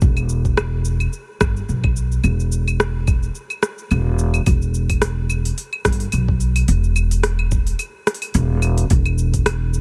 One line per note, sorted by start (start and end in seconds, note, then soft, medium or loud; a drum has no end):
0.01 1.05 E1 medium
0.01 kick loud
0.01 shaker soft
0.17 claves medium
0.17 shaker soft
0.29 shaker medium
0.45 kick medium
0.45 shaker soft
0.57 cross-stick medium
0.57 claves medium
0.57 shaker soft
0.85 shaker medium
1.00 claves medium
1.00 shaker soft
1.13 shaker soft
1.41 1.59 G1 medium
1.41 kick loud
1.41 cross-stick medium
1.41 claves medium
1.41 shaker medium
1.57 shaker soft
1.69 2.17 B1 medium
1.69 shaker soft
1.84 kick loud
1.84 claves medium
1.96 shaker medium
2.12 shaker soft
2.24 3.27 E1 medium
2.24 claves medium
2.24 shaker soft
2.40 shaker soft
2.52 shaker medium
2.68 claves medium
2.68 shaker soft
2.80 cross-stick medium
2.80 shaker soft
3.07 kick loud
3.07 claves medium
3.07 shaker medium
3.23 shaker soft
3.35 shaker soft
3.50 claves medium
3.50 shaker soft
3.63 cross-stick medium
3.63 shaker medium
3.78 shaker soft
3.91 4.39 E1 medium
3.91 claves medium
3.91 shaker soft
4.19 shaker medium
4.34 claves medium
4.34 shaker soft
4.46 5.50 E1 medium
4.46 kick loud
4.46 open hi-hat soft
4.46 claves medium
4.46 shaker soft
4.62 shaker soft
4.74 shaker medium
4.90 kick medium
4.90 open hi-hat soft
4.90 claves medium
4.90 shaker soft
5.02 cross-stick medium
5.02 open hi-hat medium
5.02 shaker soft
5.30 claves medium
5.30 shaker medium
5.45 open hi-hat soft
5.45 shaker soft
5.58 open hi-hat medium
5.58 shaker soft
5.73 claves medium
5.85 6.04 G1 medium
5.85 kick loud
5.85 cross-stick medium
5.85 open hi-hat soft
5.85 shaker medium
5.92 open hi-hat soft
6.00 open hi-hat soft
6.00 shaker soft
6.12 6.61 B1 medium
6.12 open hi-hat medium
6.12 claves medium
6.12 shaker soft
6.28 kick medium
6.40 open hi-hat soft
6.40 shaker medium
6.56 open hi-hat soft
6.56 claves medium
6.56 shaker soft
6.68 7.72 E1 medium
6.68 open hi-hat medium
6.68 shaker soft
6.84 shaker soft
6.96 claves medium
6.96 shaker medium
7.11 open hi-hat soft
7.11 shaker soft
7.23 cross-stick medium
7.23 open hi-hat medium
7.23 shaker soft
7.39 claves medium
7.51 kick loud
7.51 shaker medium
7.67 open hi-hat soft
7.67 shaker soft
7.79 open hi-hat medium
7.79 claves medium
7.79 shaker soft
8.07 cross-stick medium
8.07 open hi-hat soft
8.07 shaker medium
8.14 open hi-hat medium
8.22 open hi-hat soft
8.22 claves medium
8.22 shaker soft
8.34 8.83 E1 loud
8.34 open hi-hat medium
8.34 shaker soft
8.62 open hi-hat soft
8.62 claves medium
8.62 shaker medium
8.78 open hi-hat soft
8.78 shaker soft
8.90 9.81 E1 loud
8.90 kick loud
8.90 open hi-hat medium
8.90 shaker soft
9.06 claves medium
9.06 shaker soft
9.18 shaker medium
9.34 kick medium
9.34 open hi-hat soft
9.34 shaker soft
9.46 cross-stick medium
9.46 open hi-hat medium
9.46 claves medium
9.46 shaker soft
9.74 shaker medium